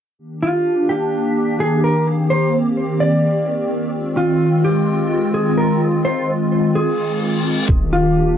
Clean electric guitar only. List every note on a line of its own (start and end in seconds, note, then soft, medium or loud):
0.43 0.87 F4 medium
0.89 1.56 G4 medium
1.60 1.82 G#4 medium
1.84 2.06 A#4 medium
2.30 2.52 C5 medium
3.00 3.90 D5 medium
4.17 4.61 F4 medium
4.65 5.31 G4 medium
5.34 5.57 G#4 medium
5.58 5.80 A#4 medium
6.05 6.27 C5 medium
6.75 7.19 G#4 medium
7.93 8.37 F4 medium